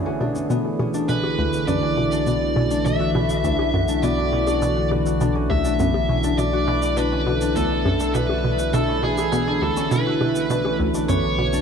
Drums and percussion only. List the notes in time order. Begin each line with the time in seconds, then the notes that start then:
0.21 low bongo
0.35 cabasa
0.50 cabasa
0.79 low bongo
0.94 cabasa
1.09 cabasa
1.24 low bongo
1.53 cabasa
1.68 cabasa
2.12 cabasa
2.27 cabasa
2.71 cabasa
2.86 cabasa
3.15 low bongo
3.29 cabasa
3.44 cabasa
3.59 low bongo
3.88 cabasa
4.03 cabasa
4.47 low bongo, cabasa
4.62 cabasa
4.91 low bongo
5.06 cabasa
5.21 cabasa
5.50 low bongo
5.65 cabasa
5.79 cabasa
5.94 low bongo
6.24 cabasa
6.38 cabasa
6.82 cabasa
6.97 cabasa
7.41 cabasa
7.56 cabasa
7.85 low bongo
8.00 cabasa
8.15 cabasa
8.29 low bongo
8.59 cabasa
8.74 cabasa
9.18 low bongo, cabasa
9.33 cabasa
9.62 low bongo
9.77 cabasa
9.91 cabasa
10.21 low bongo
10.35 cabasa
10.50 cabasa
10.65 low bongo
10.94 cabasa
11.09 cabasa
11.53 cabasa